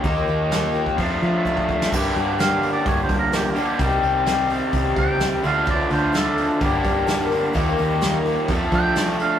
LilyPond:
<<
  \new Staff \with { instrumentName = "Clean electric guitar" } { \time 4/4 \key g \minor \tempo 4 = 128 r1 | r4 \tuplet 3/2 { f''4 d''8 cis''8 c''8 bes'8 g'8 f'8 g'8~ } | g'4. r4 g''4 f''8 | d''8 c''8 a'4 r2 |
r2 r8 g''4 f''8 | }
  \new Staff \with { instrumentName = "Accordion" } { \time 4/4 \key g \minor r1 | <bes d' g' bes'>1 | <c' ees' g' c''>2.~ <c' ees' g' c''>8 <d' f' a' d''>8~ | <d' f' a' d''>2 <d' g' bes' d''>2 |
<f' g' bes' ees''>2 <d' f' a' d''>2 | }
  \new Staff \with { instrumentName = "Twelve-string acoustic guitar" } { \time 4/4 \key g \minor <ees f bes f' g'>8 <bes f' g'>8 <ees f bes f' g'>8 <bes f' g'>8 <f d' f' a'>8 <d' f' a'>8 <f d' f' a'>8 <d' f' a'>8 | <g, d g bes d' g'>8 <g bes d' g'>8 <g, d g bes d' g'>8 <g bes d' g'>8 <g bes d' g'>8 <g bes d' g'>8 <g, d g bes d' g'>8 <g bes d' g'>8 | <c g c' ees' g'>8 <c' ees' g'>8 <c g c' ees' g'>8 <c' ees' g'>8 <g c' ees' g'>8 <c' ees' g'>8 <c g c' ees' g'>8 <d' f' a'>8 | <d f d' f' a'>8 <d' f' a'>8 <d f d' f' a'>8 <d' f' a'>8 <g bes d' bes'>8 <g bes d' bes'>8 <g, d g bes d' bes'>8 <g bes d' bes'>8 |
<ees f bes f' g'>8 <bes f' g'>8 <ees f bes f' g'>8 <bes f' g'>8 <f d' f' a'>8 <d' f' a'>8 <f d' f' a'>8 <d' f' a'>8 | }
  \new Staff \with { instrumentName = "Overdriven electric guitar" } { \time 4/4 \key g \minor <ees bes ees' g'>2 <f a d' f'>2 | <g, d g bes d' g'>2.~ <g, d g bes d' g'>8 <g, d g bes d' g'>8 | <c ees g c' g'>2.~ <c ees g c' g'>8 <d a d' f'>8~ | <d a d' f'>2 <g, d g bes d' g'>2 |
<ees g bes ees' g'>2 <f a d' a'>2 | }
  \new Staff \with { instrumentName = "Fingered electric bass" } { \clef bass \time 4/4 \key g \minor ees,8 ees,4. f,8 f4. | g,8 g,4. g,8 g4. | c,8 c,4. c,8 cis,4 d,8~ | d,8 d,4. g,,8 g,4. |
ees,8 ees,4. f,8 f4. | }
  \new DrumStaff \with { instrumentName = "Drums" } \drummode { \time 4/4 <hho bd>4 <hho sn>8. bd16 <hho bd>4 bd16 bd16 bd16 sn16 | <cymc bd>8 hho8 <hho sn>8 hho8 <hho bd>8 <hho bd>8 <hho sn>8 hho8 | <hho bd>8 hho8 <hho sn>8 hho8 <hho bd>8 <hho bd>8 <hho sn>8 hho8 | <hho bd>8 hho8 <hho sn>8 hho8 <hho bd>8 <hho bd>8 <hho sn>8 hho8 |
<hho bd>8 hho8 <hho sn>8 hho8 <hho bd>8 <hho bd>8 <hho sn>8 hho8 | }
>>